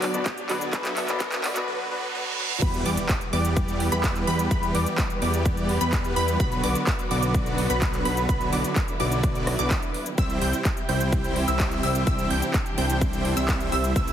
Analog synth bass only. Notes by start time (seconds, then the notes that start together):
2.62 E2
2.86 E2
3.33 E2
3.92 E2
4.27 E2
4.51 E2
4.75 E2
5.22 E2
5.81 E2
6.16 E2
6.40 B1
6.64 B1
7.11 B1
7.70 B1
8.05 B1
8.29 B1
8.53 B1
9.00 B1
9.59 B1
10.18 C2
10.42 C2
10.89 C2
11.48 C2
11.83 C2
12.07 C2
12.31 C2
12.78 C2
13.37 C2
13.72 C2
13.96 C2